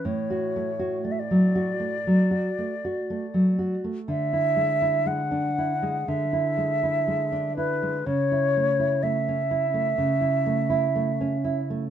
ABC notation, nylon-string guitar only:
X:1
M:4/4
L:1/16
Q:1/4=61
K:A
V:1 name="Nylon-string guitar"
A,, F A, F A, F, F A, F, F A, F A, F, F A, | D, E G, E G, D E G, D, E G, E G, D E G, | C, E A, E A, C E A, C, E A, E A, C E A, |]